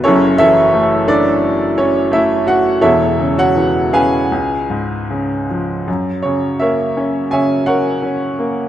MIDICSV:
0, 0, Header, 1, 2, 480
1, 0, Start_track
1, 0, Tempo, 678733
1, 33, Time_signature, 4, 2, 24, 8
1, 994, Tempo, 705053
1, 1954, Tempo, 747198
1, 2914, Tempo, 785340
1, 3874, Tempo, 737101
1, 4354, Tempo, 703400
1, 5765, End_track
2, 0, Start_track
2, 0, Title_t, "Upright piano"
2, 0, Program_c, 0, 0
2, 0, Control_c, 0, 64, 127
2, 26, Note_on_c, 0, 73, 94
2, 27, Note_on_c, 0, 64, 69
2, 32, Note_on_c, 0, 61, 69
2, 36, Note_on_c, 0, 69, 66
2, 43, Control_c, 0, 64, 0
2, 53, Note_on_c, 0, 30, 71
2, 54, Note_on_c, 0, 42, 78
2, 147, Control_c, 0, 64, 127
2, 252, Note_off_c, 0, 64, 0
2, 254, Note_off_c, 0, 61, 0
2, 256, Note_off_c, 0, 69, 0
2, 271, Note_on_c, 0, 76, 117
2, 275, Note_off_c, 0, 73, 0
2, 278, Note_on_c, 0, 64, 68
2, 278, Note_on_c, 0, 69, 72
2, 286, Note_on_c, 0, 52, 63
2, 520, Note_on_c, 0, 57, 62
2, 727, Note_off_c, 0, 64, 0
2, 727, Note_off_c, 0, 69, 0
2, 762, Note_on_c, 0, 69, 68
2, 763, Note_on_c, 0, 62, 68
2, 765, Note_on_c, 0, 74, 89
2, 766, Note_off_c, 0, 76, 0
2, 1206, Note_off_c, 0, 62, 0
2, 1206, Note_off_c, 0, 69, 0
2, 1208, Note_off_c, 0, 52, 0
2, 1246, Note_on_c, 0, 61, 63
2, 1248, Note_off_c, 0, 74, 0
2, 1248, Note_on_c, 0, 73, 80
2, 1445, Note_off_c, 0, 57, 0
2, 1461, Note_off_c, 0, 61, 0
2, 1478, Note_on_c, 0, 57, 55
2, 1484, Note_off_c, 0, 73, 0
2, 1487, Note_on_c, 0, 64, 71
2, 1487, Note_on_c, 0, 76, 93
2, 1704, Note_off_c, 0, 64, 0
2, 1717, Note_on_c, 0, 66, 69
2, 1723, Note_on_c, 0, 78, 92
2, 1727, Note_off_c, 0, 76, 0
2, 1936, Note_off_c, 0, 30, 0
2, 1936, Note_off_c, 0, 42, 0
2, 1940, Note_off_c, 0, 66, 0
2, 1944, Note_off_c, 0, 57, 0
2, 1951, Note_on_c, 0, 64, 64
2, 1953, Note_on_c, 0, 69, 69
2, 1953, Note_on_c, 0, 73, 66
2, 1957, Note_on_c, 0, 76, 96
2, 1963, Control_c, 0, 64, 0
2, 1965, Note_on_c, 0, 40, 63
2, 1966, Note_off_c, 0, 78, 0
2, 1967, Note_on_c, 0, 28, 61
2, 2057, Control_c, 0, 64, 127
2, 2194, Note_on_c, 0, 49, 52
2, 2279, Note_off_c, 0, 64, 0
2, 2279, Note_off_c, 0, 73, 0
2, 2280, Note_off_c, 0, 69, 0
2, 2317, Note_off_c, 0, 76, 0
2, 2318, Note_on_c, 0, 66, 65
2, 2321, Note_on_c, 0, 73, 62
2, 2323, Note_on_c, 0, 78, 101
2, 2435, Note_on_c, 0, 52, 49
2, 2650, Note_off_c, 0, 66, 0
2, 2651, Note_off_c, 0, 73, 0
2, 2670, Note_on_c, 0, 77, 56
2, 2673, Note_on_c, 0, 61, 51
2, 2674, Note_on_c, 0, 68, 58
2, 2674, Note_on_c, 0, 71, 55
2, 2674, Note_on_c, 0, 80, 93
2, 2687, Note_off_c, 0, 78, 0
2, 2893, Note_off_c, 0, 40, 0
2, 2894, Note_off_c, 0, 28, 0
2, 2896, Note_off_c, 0, 49, 0
2, 2904, Note_off_c, 0, 52, 0
2, 2909, Note_off_c, 0, 61, 0
2, 2918, Note_on_c, 0, 37, 57
2, 2921, Control_c, 0, 64, 0
2, 3040, Control_c, 0, 64, 127
2, 3152, Note_on_c, 0, 44, 43
2, 3400, Note_on_c, 0, 49, 41
2, 3614, Note_off_c, 0, 77, 0
2, 3616, Note_off_c, 0, 68, 0
2, 3616, Note_off_c, 0, 71, 0
2, 3616, Note_off_c, 0, 80, 0
2, 3644, Note_on_c, 0, 53, 41
2, 3851, Note_off_c, 0, 37, 0
2, 3851, Note_off_c, 0, 44, 0
2, 3861, Note_off_c, 0, 49, 0
2, 3869, Note_off_c, 0, 53, 0
2, 3871, Note_on_c, 0, 42, 50
2, 3881, Control_c, 0, 64, 0
2, 3997, Control_c, 0, 64, 127
2, 4098, Note_on_c, 0, 73, 65
2, 4116, Note_on_c, 0, 49, 42
2, 4339, Note_on_c, 0, 76, 74
2, 4342, Note_off_c, 0, 73, 0
2, 4348, Note_on_c, 0, 70, 50
2, 4351, Note_on_c, 0, 73, 51
2, 4354, Note_on_c, 0, 58, 43
2, 4594, Note_on_c, 0, 61, 47
2, 4826, Note_on_c, 0, 80, 79
2, 4827, Note_off_c, 0, 76, 0
2, 4829, Note_off_c, 0, 49, 0
2, 4830, Note_off_c, 0, 73, 0
2, 4838, Note_on_c, 0, 76, 58
2, 4839, Note_on_c, 0, 49, 47
2, 4840, Note_on_c, 0, 73, 57
2, 5062, Note_off_c, 0, 73, 0
2, 5066, Note_off_c, 0, 70, 0
2, 5067, Note_on_c, 0, 78, 83
2, 5072, Note_on_c, 0, 73, 61
2, 5075, Note_off_c, 0, 80, 0
2, 5077, Note_on_c, 0, 70, 61
2, 5286, Note_off_c, 0, 58, 0
2, 5304, Note_off_c, 0, 61, 0
2, 5314, Note_on_c, 0, 61, 46
2, 5562, Note_on_c, 0, 58, 47
2, 5764, Note_off_c, 0, 42, 0
2, 5765, Note_off_c, 0, 49, 0
2, 5765, Note_off_c, 0, 58, 0
2, 5765, Note_off_c, 0, 61, 0
2, 5765, Note_off_c, 0, 70, 0
2, 5765, Note_off_c, 0, 73, 0
2, 5765, Note_off_c, 0, 76, 0
2, 5765, Note_off_c, 0, 78, 0
2, 5765, End_track
0, 0, End_of_file